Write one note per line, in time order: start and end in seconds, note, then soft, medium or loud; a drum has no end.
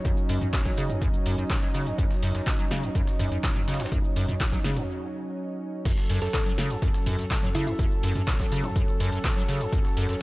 0.00 5.81 F#3 medium
0.00 5.82 C#4 medium
0.00 5.84 D#4 loud
0.00 4.89 F#4 medium
0.00 4.89 C#5 medium
0.00 4.91 D#5 medium
0.05 0.12 F#2 loud
0.05 kick loud
0.05 closed hi-hat medium
0.05 shaker soft
0.17 shaker soft
0.29 0.39 F#2 loud
0.29 closed hi-hat medium
0.29 open hi-hat loud
0.29 shaker medium
0.41 closed hi-hat medium
0.41 mid tom medium
0.41 shaker soft
0.53 0.60 B2 medium
0.53 kick loud
0.53 snare loud
0.53 clap loud
0.53 closed hi-hat medium
0.53 shaker soft
0.65 0.72 F#3 medium
0.65 kick medium
0.65 snare soft
0.65 closed hi-hat soft
0.65 shaker soft
0.77 0.91 C#3 loud
0.77 closed hi-hat medium
0.77 open hi-hat medium
0.77 shaker medium
0.90 0.96 F#2 loud
0.90 closed hi-hat soft
0.90 mid tom medium
0.90 shaker soft
1.02 1.08 F#2 loud
1.02 kick loud
1.02 closed hi-hat medium
1.02 shaker soft
1.14 closed hi-hat soft
1.14 shaker soft
1.26 1.36 F#2 loud
1.26 closed hi-hat medium
1.26 open hi-hat loud
1.26 shaker medium
1.38 closed hi-hat medium
1.38 shaker soft
1.50 1.57 B2 medium
1.50 kick loud
1.50 snare loud
1.50 clap loud
1.50 closed hi-hat medium
1.50 shaker soft
1.62 1.69 F#3 medium
1.62 closed hi-hat soft
1.62 shaker soft
1.74 1.88 C#3 loud
1.74 open hi-hat medium
1.74 shaker medium
1.86 1.93 F#2 loud
1.86 closed hi-hat medium
1.86 shaker soft
1.98 2.05 F#2 loud
1.98 kick loud
1.98 closed hi-hat medium
1.98 shaker soft
2.11 snare soft
2.11 shaker soft
2.23 2.33 F#2 loud
2.23 closed hi-hat medium
2.23 open hi-hat loud
2.23 shaker medium
2.35 2.41 F#2 medium
2.35 snare medium
2.35 closed hi-hat medium
2.35 shaker soft
2.47 2.54 B2 medium
2.47 kick loud
2.47 snare loud
2.47 clap loud
2.47 closed hi-hat medium
2.47 shaker soft
2.59 2.66 F#3 medium
2.59 closed hi-hat soft
2.59 shaker soft
2.71 2.85 C#3 loud
2.71 snare medium
2.71 closed hi-hat medium
2.71 open hi-hat medium
2.71 shaker medium
2.83 2.90 F#2 loud
2.83 closed hi-hat medium
2.83 shaker soft
2.95 3.02 F#2 loud
2.95 kick loud
2.95 closed hi-hat medium
2.95 shaker soft
3.07 snare soft
3.07 closed hi-hat soft
3.07 shaker soft
3.19 3.29 F#2 loud
3.19 closed hi-hat medium
3.19 mid tom medium
3.19 open hi-hat loud
3.19 shaker medium
3.31 3.38 F#2 medium
3.31 closed hi-hat medium
3.31 shaker soft
3.44 3.50 B2 medium
3.44 kick loud
3.44 snare loud
3.44 clap loud
3.44 closed hi-hat medium
3.44 shaker soft
3.56 3.62 F#3 medium
3.56 mid tom medium
3.56 shaker soft
3.68 3.81 C#3 loud
3.68 snare medium
3.68 closed hi-hat medium
3.68 open hi-hat medium
3.68 shaker medium
3.74 snare medium
3.74 closed hi-hat medium
3.80 3.87 F#2 medium
3.80 snare medium
3.80 closed hi-hat medium
3.80 shaker soft
3.86 snare medium
3.86 closed hi-hat medium
3.92 3.99 F#2 loud
3.92 kick loud
3.92 closed hi-hat medium
3.92 shaker soft
4.04 shaker soft
4.16 4.26 F#2 loud
4.16 closed hi-hat medium
4.16 open hi-hat loud
4.16 shaker medium
4.29 closed hi-hat medium
4.29 mid tom medium
4.29 shaker soft
4.40 4.47 B2 medium
4.40 kick loud
4.40 snare loud
4.40 clap loud
4.40 closed hi-hat medium
4.40 shaker soft
4.52 4.59 F#3 medium
4.52 kick medium
4.52 snare soft
4.52 closed hi-hat soft
4.52 shaker soft
4.64 4.78 C#3 loud
4.64 snare medium
4.64 snare soft
4.64 closed hi-hat medium
4.64 open hi-hat medium
4.64 shaker medium
4.76 4.83 F#2 loud
4.76 closed hi-hat medium
4.76 mid tom medium
4.76 shaker soft
5.85 5.92 F#2 loud
5.85 10.22 F#3 medium
5.85 10.22 C#4 medium
5.85 10.22 A4 medium
5.85 kick loud
5.85 closed hi-hat medium
5.85 crash loud
5.85 shaker soft
5.98 snare soft
5.98 shaker soft
6.10 6.20 F#2 loud
6.10 closed hi-hat medium
6.10 open hi-hat loud
6.10 ride medium
6.10 shaker medium
6.22 6.29 F#2 medium
6.22 6.30 A4 medium
6.22 snare medium
6.22 closed hi-hat medium
6.22 shaker soft
6.34 6.41 B2 medium
6.34 6.42 A4 medium
6.34 kick loud
6.34 snare loud
6.34 clap loud
6.34 closed hi-hat medium
6.34 shaker soft
6.46 6.53 F#3 medium
6.46 closed hi-hat soft
6.46 shaker soft
6.58 6.72 C#3 loud
6.58 snare medium
6.58 closed hi-hat medium
6.58 open hi-hat medium
6.58 ride medium
6.58 shaker medium
6.70 6.77 F#2 loud
6.70 closed hi-hat medium
6.70 shaker soft
6.82 6.89 F#2 loud
6.82 kick loud
6.82 closed hi-hat medium
6.82 shaker soft
6.94 snare soft
6.94 closed hi-hat soft
6.94 shaker soft
7.06 7.17 F#2 loud
7.06 closed hi-hat medium
7.06 mid tom loud
7.06 open hi-hat loud
7.06 ride medium
7.06 shaker medium
7.19 7.25 F#2 medium
7.19 closed hi-hat medium
7.19 shaker soft
7.31 7.37 B2 medium
7.31 kick loud
7.31 snare loud
7.31 clap loud
7.31 closed hi-hat medium
7.31 shaker soft
7.43 7.50 F#3 medium
7.43 mid tom medium
7.43 shaker soft
7.55 7.68 C#3 loud
7.55 7.63 E4 medium
7.55 snare soft
7.55 closed hi-hat medium
7.55 open hi-hat medium
7.55 ride medium
7.55 shaker medium
7.67 7.74 F#2 loud
7.67 7.75 E4 medium
7.67 closed hi-hat medium
7.67 shaker soft
7.79 7.86 F#2 loud
7.79 kick loud
7.79 closed hi-hat medium
7.79 shaker soft
7.91 shaker soft
8.03 8.13 F#2 loud
8.03 closed hi-hat medium
8.03 open hi-hat loud
8.03 ride medium
8.03 shaker medium
8.15 8.22 F#2 medium
8.15 closed hi-hat medium
8.15 mid tom medium
8.15 shaker soft
8.27 8.34 B2 medium
8.27 kick loud
8.27 snare loud
8.27 clap loud
8.27 closed hi-hat medium
8.27 shaker soft
8.40 8.46 F#3 medium
8.40 kick medium
8.40 snare soft
8.40 closed hi-hat soft
8.40 shaker soft
8.52 8.65 C#3 loud
8.52 closed hi-hat medium
8.52 open hi-hat medium
8.52 ride medium
8.52 shaker medium
8.64 8.70 F#2 loud
8.64 closed hi-hat medium
8.64 mid tom loud
8.64 shaker soft
8.76 8.83 F#2 loud
8.76 kick loud
8.76 closed hi-hat medium
8.76 shaker soft
8.88 closed hi-hat soft
8.88 shaker soft
9.00 9.10 F#2 loud
9.00 closed hi-hat medium
9.00 open hi-hat loud
9.00 ride medium
9.00 shaker medium
9.12 9.19 F#2 medium
9.12 closed hi-hat medium
9.12 shaker soft
9.24 9.31 B2 medium
9.24 kick loud
9.24 snare loud
9.24 clap loud
9.24 closed hi-hat medium
9.24 shaker soft
9.36 9.43 F#3 medium
9.36 closed hi-hat soft
9.36 shaker soft
9.48 9.62 C#3 loud
9.48 open hi-hat medium
9.48 open hi-hat loud
9.48 ride medium
9.48 shaker medium
9.61 9.67 F#2 loud
9.61 closed hi-hat medium
9.61 shaker soft
9.73 9.79 F#2 loud
9.73 kick loud
9.73 closed hi-hat medium
9.73 shaker soft
9.85 snare soft
9.85 shaker soft
9.97 10.07 F#2 loud
9.97 closed hi-hat medium
9.97 open hi-hat loud
9.97 ride medium
9.97 shaker medium
10.09 10.16 F#2 medium
10.09 snare medium
10.09 closed hi-hat medium
10.09 shaker soft